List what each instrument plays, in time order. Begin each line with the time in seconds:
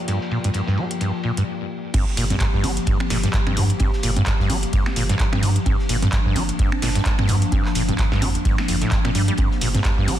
Already playing: ambient pad F3 A#3 G4, analog synth pad F4 A#4 D5 G5
0.08 acid bass G2, closed hi-hat, ride
0.21 snare
0.31 acid bass A#2, ride
0.44 acid bass G2, closed hi-hat
0.54 acid bass G2, closed hi-hat, ride
0.67 acid bass G2, snare
0.77 acid bass G3, ride
0.91 closed hi-hat
1.01 acid bass G2, closed hi-hat, ride
1.23 acid bass A#2, ride
1.37 acid bass G2, closed hi-hat
1.94 acid bass G2, ambient pad F3 A#3 G4, kick, closed hi-hat, ride, crash, high conga
2.07 snare
2.17 analog synth bass G1, acid bass A#2, open hi-hat, ride
2.30 acid bass G2, snare, closed hi-hat, mid tom, high conga
2.40 acid bass G2, kick, snare, clap, closed hi-hat, ride
2.54 acid bass G2, kick
2.64 analog synth bass G1, acid bass G3, open hi-hat, ride, high conga
2.77 closed hi-hat
2.87 acid bass G2, kick, closed hi-hat, ride
3.00 finger snap, high conga
3.10 analog synth bass G1, acid bass A#2, snare, open hi-hat, ride
3.23 acid bass G2, snare, closed hi-hat
3.33 acid bass G2, kick, snare, clap, closed hi-hat, ride
3.47 acid bass G2, finger snap, mid tom, high conga
3.57 analog synth bass G2, acid bass G3, open hi-hat, ride
3.70 closed hi-hat
3.80 acid bass G2, kick, closed hi-hat, ride, high conga
3.93 snare
4.03 analog synth bass G1, acid bass A#2, open hi-hat, ride
4.16 acid bass G2, closed hi-hat, mid tom, high conga
4.26 acid bass G2, kick, snare, clap, closed hi-hat, ride
4.40 acid bass G2, kick, snare
4.50 analog synth bass G1, acid bass G3, open hi-hat, ride, high conga
4.63 closed hi-hat
4.73 acid bass G2, kick, closed hi-hat, ride
4.86 finger snap, snare, high conga
4.96 analog synth bass G1, acid bass A#2, open hi-hat, ride
5.09 acid bass G2, snare, closed hi-hat
5.19 acid bass G2, kick, snare, clap, closed hi-hat, ride
5.33 acid bass G2, finger snap, snare, high conga
5.43 analog synth bass G2, acid bass G3, open hi-hat, ride
5.56 closed hi-hat
5.66 acid bass G2, ambient pad D4, kick, closed hi-hat, ride, high conga
5.79 snare
5.89 analog synth bass G1, acid bass A#2, open hi-hat, ride
6.02 acid bass G2, snare, closed hi-hat, mid tom, high conga
6.12 acid bass G2, kick, snare, clap, closed hi-hat, ride
6.26 acid bass G2, kick
6.36 analog synth bass G1, acid bass G3, open hi-hat, ride, high conga
6.49 closed hi-hat
6.59 acid bass G2, kick, closed hi-hat, ride
6.72 finger snap, high conga
6.82 analog synth bass G1, acid bass A#2, snare, open hi-hat, ride
6.95 acid bass G2, snare, closed hi-hat, ride
7.05 acid bass G2, kick, snare, clap, closed hi-hat, ride
7.19 acid bass G2, finger snap, mid tom, high conga
7.28 analog synth bass G2, acid bass G3, open hi-hat, ride
7.42 closed hi-hat
7.52 acid bass G2, kick, closed hi-hat, ride, high conga
7.65 snare, clap
7.75 analog synth bass G1, acid bass A#2, open hi-hat, ride
7.89 acid bass G2, closed hi-hat, mid tom, high conga
7.99 acid bass G2, kick, snare, clap, closed hi-hat, ride
8.12 acid bass G2, kick, snare
8.22 analog synth bass G1, acid bass G3, mid tom, open hi-hat, ride, high conga
8.35 closed hi-hat
8.45 acid bass G2, kick, closed hi-hat, ride
8.58 finger snap, snare, high conga
8.68 analog synth bass G1, acid bass F2, open hi-hat, ride
8.82 acid bass A2, snare, closed hi-hat
8.91 acid bass G2, kick, snare, clap, closed hi-hat, ride
9.05 acid bass A#2, finger snap, snare, high conga
9.15 analog synth bass G2, acid bass G3, open hi-hat, ride
9.28 acid bass G3, closed hi-hat
9.37 acid bass G2, ambient pad G4, kick, closed hi-hat, ride, high conga
9.51 snare
9.61 analog synth bass G1, acid bass A#2, open hi-hat, ride
9.74 acid bass G2, snare, closed hi-hat, mid tom, high conga
9.84 acid bass G2, kick, snare, clap, closed hi-hat, ride
9.98 acid bass G2, kick
10.08 analog synth bass G1, acid bass G3, open hi-hat, ride, high conga